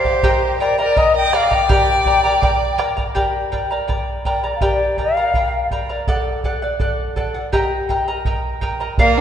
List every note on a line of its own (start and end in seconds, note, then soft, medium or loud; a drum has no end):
0.00 0.56 G4 medium
0.00 0.57 C5 medium
0.05 0.23 D5 soft
0.05 0.24 F5 medium
0.05 bombo low medium
0.23 0.60 G4 medium
0.23 0.59 A#4 medium
0.23 0.60 D#5 medium
0.23 0.59 G5 medium
0.23 0.61 A#5 medium
0.23 bombo low medium
0.60 0.79 A#4 medium
0.60 0.78 A#4 medium
0.60 0.77 D5 medium
0.60 0.78 D#5 medium
0.60 0.78 G5 medium
0.60 0.77 A#5 medium
0.79 0.97 A#4 medium
0.79 0.95 A#4 soft
0.79 0.99 D5 medium
0.79 0.96 D#5 soft
0.79 0.96 A#5 medium
0.96 1.32 A#4 medium
0.96 1.15 A#4 medium
0.96 1.32 D#5 medium
0.96 1.16 D#5 loud
0.96 1.31 G5 medium
0.96 1.33 A#5 medium
0.96 bombo low medium
1.16 1.35 D#5 medium
1.16 1.37 G5 loud
1.32 1.51 A#4 medium
1.32 1.52 D5 medium
1.32 1.50 D#5 medium
1.32 1.56 F5 loud
1.32 1.51 G5 medium
1.32 1.50 A#5 medium
1.32 bombo rim medium
1.51 1.68 A#4 soft
1.51 2.80 D5 medium
1.51 1.69 D#5 soft
1.51 1.69 A#5 medium
1.51 bombo low medium
1.55 2.81 G5 medium
1.69 2.06 G4 medium
1.69 2.05 A#4 medium
1.69 2.06 D5 medium
1.69 2.05 G5 medium
1.69 2.06 A#5 medium
1.69 bombo low medium
2.05 2.24 A#4 medium
2.05 2.23 D5 medium
2.05 2.24 G5 medium
2.05 2.22 A#5 medium
2.05 bombo low medium
2.24 2.41 A#4 soft
2.24 2.42 D5 soft
2.24 2.42 A#5 medium
2.42 2.77 A#4 medium
2.42 2.77 D5 medium
2.42 2.77 G5 medium
2.42 2.78 A#5 medium
2.42 bombo low medium
2.78 2.97 A#4 medium
2.78 2.96 D5 medium
2.78 2.97 G5 medium
2.78 2.96 A#5 medium
2.78 bombo rim medium
2.97 3.14 A#4 soft
2.97 3.15 D5 medium
2.97 3.15 A#5 medium
2.97 bombo low medium
3.15 3.52 G4 medium
3.15 3.51 A#4 medium
3.15 3.52 D5 medium
3.15 3.51 G5 medium
3.15 3.52 A#5 medium
3.15 bombo low medium
3.52 3.71 A#4 medium
3.52 3.71 D5 medium
3.52 3.70 G5 medium
3.52 3.70 A#5 medium
3.52 bombo low soft
3.71 3.87 A#4 soft
3.71 3.88 D5 soft
3.71 3.88 A#5 medium
3.88 4.25 A#4 medium
3.88 4.25 D5 medium
3.88 4.24 G5 medium
3.88 4.25 A#5 medium
3.88 bombo low medium
4.25 4.43 A#4 medium
4.25 4.43 D5 medium
4.25 4.44 G5 medium
4.25 4.42 A#5 medium
4.25 bombo low medium
4.44 4.61 A#4 soft
4.44 4.61 D5 soft
4.44 4.61 A#5 soft
4.56 4.64 F5 medium
4.61 4.98 G4 medium
4.61 4.98 A#4 medium
4.61 4.97 D5 medium
4.61 4.99 D5 medium
4.61 4.97 G5 medium
4.61 4.98 A#5 medium
4.61 bombo low medium
4.98 5.17 A#4 medium
4.98 5.17 D5 medium
4.98 5.69 F5 loud
4.98 5.17 G5 medium
4.98 5.16 A#5 medium
4.98 bombo low soft
5.17 5.34 A#4 soft
5.17 5.35 D5 soft
5.17 5.35 A#5 medium
5.34 5.71 A#4 medium
5.34 5.71 D5 soft
5.34 5.70 G5 soft
5.34 5.71 A#5 medium
5.34 bombo low medium
5.71 5.89 A#4 medium
5.71 5.89 D5 medium
5.71 5.90 G5 medium
5.71 5.88 A#5 medium
5.71 bombo low medium
5.89 6.08 A#4 soft
5.89 6.07 D5 soft
5.89 6.08 A#5 soft
6.07 6.43 A4 medium
6.07 6.44 D5 medium
6.07 6.44 F#5 medium
6.07 bombo low medium
6.44 6.62 A4 medium
6.44 6.62 D5 medium
6.44 6.61 F#5 medium
6.44 bombo low medium
6.62 6.79 D5 soft
6.62 6.80 F#5 medium
6.79 7.15 A4 medium
6.79 7.16 D5 medium
6.79 7.16 F#5 medium
6.79 bombo low medium
7.16 7.35 A4 medium
7.16 7.34 D5 medium
7.16 7.33 F#5 medium
7.16 bombo low medium
7.34 7.52 D5 soft
7.34 7.52 F#5 medium
7.53 7.89 G4 medium
7.53 7.89 A#4 medium
7.53 7.89 D#5 medium
7.53 7.88 G5 medium
7.53 7.89 A#5 medium
7.53 bombo low medium
7.89 8.08 A#4 medium
7.89 8.07 D#5 medium
7.89 8.08 G5 medium
7.89 8.07 A#5 medium
7.89 bombo low soft
8.08 8.25 A#4 soft
8.08 8.26 D#5 soft
8.08 8.26 A#5 medium
8.25 8.61 A#4 medium
8.25 8.61 D#5 medium
8.25 8.60 G5 medium
8.25 8.62 A#5 medium
8.25 bombo low medium
8.61 8.80 A#4 medium
8.61 8.80 D#5 medium
8.61 8.80 G5 medium
8.61 8.79 A#5 medium
8.61 bombo low soft
8.80 8.98 A#4 soft
8.80 8.99 D#5 soft
8.80 8.99 A#5 soft
8.98 9.19 A#3 medium
8.98 9.21 A#4 medium
8.98 9.21 D5 medium
8.98 9.21 F5 medium
8.98 9.20 F5 medium
8.98 bombo low medium
9.18 9.21 D4 medium